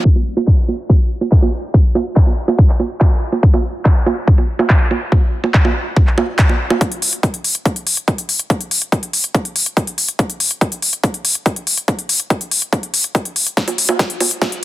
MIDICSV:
0, 0, Header, 1, 2, 480
1, 0, Start_track
1, 0, Tempo, 422535
1, 57, Time_signature, 4, 2, 24, 8
1, 16633, End_track
2, 0, Start_track
2, 0, Title_t, "Drums"
2, 56, Note_on_c, 9, 36, 112
2, 170, Note_off_c, 9, 36, 0
2, 177, Note_on_c, 9, 60, 37
2, 290, Note_off_c, 9, 60, 0
2, 417, Note_on_c, 9, 60, 73
2, 530, Note_off_c, 9, 60, 0
2, 536, Note_on_c, 9, 39, 123
2, 537, Note_on_c, 9, 36, 114
2, 650, Note_off_c, 9, 36, 0
2, 650, Note_off_c, 9, 39, 0
2, 776, Note_on_c, 9, 60, 35
2, 890, Note_off_c, 9, 60, 0
2, 1016, Note_on_c, 9, 36, 120
2, 1016, Note_on_c, 9, 60, 73
2, 1130, Note_off_c, 9, 36, 0
2, 1130, Note_off_c, 9, 60, 0
2, 1376, Note_on_c, 9, 60, 36
2, 1490, Note_off_c, 9, 60, 0
2, 1496, Note_on_c, 9, 36, 116
2, 1496, Note_on_c, 9, 39, 124
2, 1610, Note_off_c, 9, 36, 0
2, 1610, Note_off_c, 9, 39, 0
2, 1616, Note_on_c, 9, 60, 76
2, 1730, Note_off_c, 9, 60, 0
2, 1976, Note_on_c, 9, 36, 123
2, 1976, Note_on_c, 9, 60, 38
2, 2090, Note_off_c, 9, 36, 0
2, 2090, Note_off_c, 9, 60, 0
2, 2216, Note_on_c, 9, 60, 73
2, 2330, Note_off_c, 9, 60, 0
2, 2456, Note_on_c, 9, 36, 116
2, 2456, Note_on_c, 9, 39, 123
2, 2570, Note_off_c, 9, 36, 0
2, 2570, Note_off_c, 9, 39, 0
2, 2576, Note_on_c, 9, 60, 35
2, 2690, Note_off_c, 9, 60, 0
2, 2817, Note_on_c, 9, 60, 69
2, 2930, Note_off_c, 9, 60, 0
2, 2936, Note_on_c, 9, 36, 119
2, 3050, Note_off_c, 9, 36, 0
2, 3057, Note_on_c, 9, 39, 38
2, 3170, Note_off_c, 9, 39, 0
2, 3177, Note_on_c, 9, 60, 37
2, 3290, Note_off_c, 9, 60, 0
2, 3416, Note_on_c, 9, 36, 121
2, 3417, Note_on_c, 9, 39, 124
2, 3417, Note_on_c, 9, 60, 73
2, 3530, Note_off_c, 9, 36, 0
2, 3530, Note_off_c, 9, 39, 0
2, 3530, Note_off_c, 9, 60, 0
2, 3776, Note_on_c, 9, 60, 38
2, 3890, Note_off_c, 9, 60, 0
2, 3896, Note_on_c, 9, 36, 127
2, 4010, Note_off_c, 9, 36, 0
2, 4016, Note_on_c, 9, 60, 74
2, 4130, Note_off_c, 9, 60, 0
2, 4376, Note_on_c, 9, 36, 125
2, 4376, Note_on_c, 9, 39, 124
2, 4376, Note_on_c, 9, 60, 39
2, 4490, Note_off_c, 9, 36, 0
2, 4490, Note_off_c, 9, 39, 0
2, 4490, Note_off_c, 9, 60, 0
2, 4616, Note_on_c, 9, 60, 75
2, 4730, Note_off_c, 9, 60, 0
2, 4857, Note_on_c, 9, 36, 126
2, 4970, Note_off_c, 9, 36, 0
2, 4976, Note_on_c, 9, 60, 36
2, 5090, Note_off_c, 9, 60, 0
2, 5216, Note_on_c, 9, 60, 76
2, 5330, Note_off_c, 9, 60, 0
2, 5336, Note_on_c, 9, 36, 119
2, 5336, Note_on_c, 9, 39, 124
2, 5450, Note_off_c, 9, 36, 0
2, 5450, Note_off_c, 9, 39, 0
2, 5576, Note_on_c, 9, 60, 38
2, 5690, Note_off_c, 9, 60, 0
2, 5816, Note_on_c, 9, 36, 123
2, 5816, Note_on_c, 9, 60, 82
2, 5930, Note_off_c, 9, 36, 0
2, 5930, Note_off_c, 9, 60, 0
2, 6176, Note_on_c, 9, 60, 39
2, 6290, Note_off_c, 9, 60, 0
2, 6296, Note_on_c, 9, 36, 115
2, 6296, Note_on_c, 9, 39, 113
2, 6410, Note_off_c, 9, 36, 0
2, 6410, Note_off_c, 9, 39, 0
2, 6416, Note_on_c, 9, 60, 78
2, 6530, Note_off_c, 9, 60, 0
2, 6776, Note_on_c, 9, 36, 127
2, 6776, Note_on_c, 9, 60, 40
2, 6890, Note_off_c, 9, 36, 0
2, 6890, Note_off_c, 9, 60, 0
2, 6897, Note_on_c, 9, 39, 35
2, 7010, Note_off_c, 9, 39, 0
2, 7017, Note_on_c, 9, 60, 81
2, 7130, Note_off_c, 9, 60, 0
2, 7256, Note_on_c, 9, 36, 114
2, 7256, Note_on_c, 9, 39, 120
2, 7370, Note_off_c, 9, 36, 0
2, 7370, Note_off_c, 9, 39, 0
2, 7377, Note_on_c, 9, 60, 41
2, 7490, Note_off_c, 9, 60, 0
2, 7616, Note_on_c, 9, 60, 83
2, 7730, Note_off_c, 9, 60, 0
2, 7736, Note_on_c, 9, 36, 117
2, 7737, Note_on_c, 9, 42, 70
2, 7850, Note_off_c, 9, 36, 0
2, 7850, Note_off_c, 9, 42, 0
2, 7856, Note_on_c, 9, 42, 67
2, 7970, Note_off_c, 9, 42, 0
2, 7977, Note_on_c, 9, 46, 106
2, 8090, Note_off_c, 9, 46, 0
2, 8097, Note_on_c, 9, 42, 67
2, 8210, Note_off_c, 9, 42, 0
2, 8216, Note_on_c, 9, 36, 117
2, 8217, Note_on_c, 9, 42, 70
2, 8330, Note_off_c, 9, 36, 0
2, 8330, Note_off_c, 9, 42, 0
2, 8337, Note_on_c, 9, 42, 62
2, 8450, Note_off_c, 9, 42, 0
2, 8457, Note_on_c, 9, 46, 89
2, 8570, Note_off_c, 9, 46, 0
2, 8577, Note_on_c, 9, 42, 63
2, 8690, Note_off_c, 9, 42, 0
2, 8696, Note_on_c, 9, 36, 116
2, 8696, Note_on_c, 9, 42, 66
2, 8810, Note_off_c, 9, 36, 0
2, 8810, Note_off_c, 9, 42, 0
2, 8817, Note_on_c, 9, 42, 64
2, 8930, Note_off_c, 9, 42, 0
2, 8936, Note_on_c, 9, 46, 103
2, 9050, Note_off_c, 9, 46, 0
2, 9057, Note_on_c, 9, 42, 68
2, 9170, Note_off_c, 9, 42, 0
2, 9176, Note_on_c, 9, 36, 114
2, 9177, Note_on_c, 9, 42, 68
2, 9290, Note_off_c, 9, 36, 0
2, 9290, Note_off_c, 9, 42, 0
2, 9296, Note_on_c, 9, 42, 68
2, 9410, Note_off_c, 9, 42, 0
2, 9416, Note_on_c, 9, 46, 91
2, 9530, Note_off_c, 9, 46, 0
2, 9536, Note_on_c, 9, 42, 72
2, 9650, Note_off_c, 9, 42, 0
2, 9656, Note_on_c, 9, 36, 125
2, 9656, Note_on_c, 9, 42, 67
2, 9770, Note_off_c, 9, 36, 0
2, 9770, Note_off_c, 9, 42, 0
2, 9776, Note_on_c, 9, 42, 62
2, 9890, Note_off_c, 9, 42, 0
2, 9897, Note_on_c, 9, 46, 105
2, 10010, Note_off_c, 9, 46, 0
2, 10016, Note_on_c, 9, 42, 66
2, 10130, Note_off_c, 9, 42, 0
2, 10136, Note_on_c, 9, 36, 118
2, 10136, Note_on_c, 9, 42, 68
2, 10250, Note_off_c, 9, 36, 0
2, 10250, Note_off_c, 9, 42, 0
2, 10256, Note_on_c, 9, 42, 66
2, 10370, Note_off_c, 9, 42, 0
2, 10376, Note_on_c, 9, 46, 90
2, 10490, Note_off_c, 9, 46, 0
2, 10496, Note_on_c, 9, 42, 63
2, 10610, Note_off_c, 9, 42, 0
2, 10616, Note_on_c, 9, 36, 126
2, 10616, Note_on_c, 9, 42, 66
2, 10730, Note_off_c, 9, 36, 0
2, 10730, Note_off_c, 9, 42, 0
2, 10737, Note_on_c, 9, 42, 65
2, 10850, Note_off_c, 9, 42, 0
2, 10856, Note_on_c, 9, 46, 105
2, 10970, Note_off_c, 9, 46, 0
2, 10977, Note_on_c, 9, 42, 68
2, 11090, Note_off_c, 9, 42, 0
2, 11096, Note_on_c, 9, 36, 124
2, 11097, Note_on_c, 9, 42, 67
2, 11210, Note_off_c, 9, 36, 0
2, 11210, Note_off_c, 9, 42, 0
2, 11216, Note_on_c, 9, 42, 68
2, 11330, Note_off_c, 9, 42, 0
2, 11336, Note_on_c, 9, 46, 94
2, 11450, Note_off_c, 9, 46, 0
2, 11456, Note_on_c, 9, 42, 69
2, 11570, Note_off_c, 9, 42, 0
2, 11576, Note_on_c, 9, 36, 127
2, 11576, Note_on_c, 9, 42, 67
2, 11690, Note_off_c, 9, 36, 0
2, 11690, Note_off_c, 9, 42, 0
2, 11696, Note_on_c, 9, 42, 63
2, 11810, Note_off_c, 9, 42, 0
2, 11816, Note_on_c, 9, 46, 107
2, 11930, Note_off_c, 9, 46, 0
2, 11936, Note_on_c, 9, 42, 64
2, 12050, Note_off_c, 9, 42, 0
2, 12056, Note_on_c, 9, 36, 121
2, 12056, Note_on_c, 9, 42, 66
2, 12170, Note_off_c, 9, 36, 0
2, 12170, Note_off_c, 9, 42, 0
2, 12176, Note_on_c, 9, 42, 62
2, 12290, Note_off_c, 9, 42, 0
2, 12296, Note_on_c, 9, 46, 92
2, 12410, Note_off_c, 9, 46, 0
2, 12416, Note_on_c, 9, 42, 62
2, 12530, Note_off_c, 9, 42, 0
2, 12536, Note_on_c, 9, 36, 127
2, 12536, Note_on_c, 9, 42, 64
2, 12650, Note_off_c, 9, 36, 0
2, 12650, Note_off_c, 9, 42, 0
2, 12656, Note_on_c, 9, 42, 62
2, 12770, Note_off_c, 9, 42, 0
2, 12776, Note_on_c, 9, 46, 114
2, 12890, Note_off_c, 9, 46, 0
2, 12896, Note_on_c, 9, 42, 61
2, 13010, Note_off_c, 9, 42, 0
2, 13016, Note_on_c, 9, 36, 117
2, 13016, Note_on_c, 9, 42, 65
2, 13130, Note_off_c, 9, 36, 0
2, 13130, Note_off_c, 9, 42, 0
2, 13136, Note_on_c, 9, 42, 65
2, 13250, Note_off_c, 9, 42, 0
2, 13256, Note_on_c, 9, 46, 96
2, 13370, Note_off_c, 9, 46, 0
2, 13376, Note_on_c, 9, 42, 66
2, 13490, Note_off_c, 9, 42, 0
2, 13496, Note_on_c, 9, 36, 126
2, 13496, Note_on_c, 9, 42, 66
2, 13610, Note_off_c, 9, 36, 0
2, 13610, Note_off_c, 9, 42, 0
2, 13616, Note_on_c, 9, 42, 62
2, 13730, Note_off_c, 9, 42, 0
2, 13737, Note_on_c, 9, 46, 109
2, 13850, Note_off_c, 9, 46, 0
2, 13856, Note_on_c, 9, 42, 61
2, 13970, Note_off_c, 9, 42, 0
2, 13976, Note_on_c, 9, 36, 125
2, 13976, Note_on_c, 9, 42, 65
2, 14090, Note_off_c, 9, 36, 0
2, 14090, Note_off_c, 9, 42, 0
2, 14096, Note_on_c, 9, 42, 59
2, 14210, Note_off_c, 9, 42, 0
2, 14216, Note_on_c, 9, 46, 99
2, 14330, Note_off_c, 9, 46, 0
2, 14336, Note_on_c, 9, 42, 58
2, 14450, Note_off_c, 9, 42, 0
2, 14457, Note_on_c, 9, 36, 123
2, 14457, Note_on_c, 9, 42, 63
2, 14570, Note_off_c, 9, 36, 0
2, 14570, Note_off_c, 9, 42, 0
2, 14576, Note_on_c, 9, 42, 61
2, 14690, Note_off_c, 9, 42, 0
2, 14696, Note_on_c, 9, 46, 109
2, 14810, Note_off_c, 9, 46, 0
2, 14816, Note_on_c, 9, 42, 63
2, 14930, Note_off_c, 9, 42, 0
2, 14936, Note_on_c, 9, 42, 65
2, 14937, Note_on_c, 9, 36, 120
2, 15050, Note_off_c, 9, 36, 0
2, 15050, Note_off_c, 9, 42, 0
2, 15057, Note_on_c, 9, 42, 64
2, 15170, Note_off_c, 9, 42, 0
2, 15177, Note_on_c, 9, 46, 92
2, 15290, Note_off_c, 9, 46, 0
2, 15297, Note_on_c, 9, 42, 65
2, 15410, Note_off_c, 9, 42, 0
2, 15417, Note_on_c, 9, 36, 118
2, 15417, Note_on_c, 9, 38, 51
2, 15417, Note_on_c, 9, 42, 66
2, 15530, Note_off_c, 9, 36, 0
2, 15530, Note_off_c, 9, 38, 0
2, 15530, Note_off_c, 9, 42, 0
2, 15537, Note_on_c, 9, 42, 63
2, 15537, Note_on_c, 9, 60, 41
2, 15650, Note_off_c, 9, 42, 0
2, 15650, Note_off_c, 9, 60, 0
2, 15657, Note_on_c, 9, 46, 109
2, 15770, Note_off_c, 9, 46, 0
2, 15777, Note_on_c, 9, 60, 83
2, 15890, Note_off_c, 9, 60, 0
2, 15897, Note_on_c, 9, 36, 119
2, 15897, Note_on_c, 9, 38, 53
2, 15897, Note_on_c, 9, 42, 65
2, 16010, Note_off_c, 9, 36, 0
2, 16010, Note_off_c, 9, 38, 0
2, 16010, Note_off_c, 9, 42, 0
2, 16017, Note_on_c, 9, 42, 58
2, 16130, Note_off_c, 9, 42, 0
2, 16137, Note_on_c, 9, 46, 94
2, 16137, Note_on_c, 9, 60, 41
2, 16250, Note_off_c, 9, 46, 0
2, 16250, Note_off_c, 9, 60, 0
2, 16257, Note_on_c, 9, 42, 58
2, 16370, Note_off_c, 9, 42, 0
2, 16377, Note_on_c, 9, 36, 122
2, 16377, Note_on_c, 9, 38, 53
2, 16377, Note_on_c, 9, 42, 61
2, 16377, Note_on_c, 9, 60, 81
2, 16490, Note_off_c, 9, 36, 0
2, 16490, Note_off_c, 9, 38, 0
2, 16490, Note_off_c, 9, 42, 0
2, 16490, Note_off_c, 9, 60, 0
2, 16497, Note_on_c, 9, 42, 64
2, 16610, Note_off_c, 9, 42, 0
2, 16633, End_track
0, 0, End_of_file